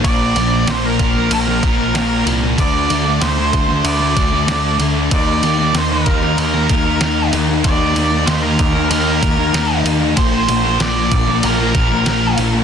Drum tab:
RD |x-x-x-x-x-x-x-x-|x-x-x-x-x-x-x-x-|x-x-x-x-x-x-x-x-|x-x-x-x-x-x-x-x-|
SD |----o----o--o---|----o-------o---|----o--o-o--o---|----o-------o---|
BD |o-----o---o-----|o-----o---o-----|o-----o---o-----|o-----o---o-----|

RD |x-x-x-x-x-x-x-x-|
SD |----o--o----o---|
BD |o-----o---o-----|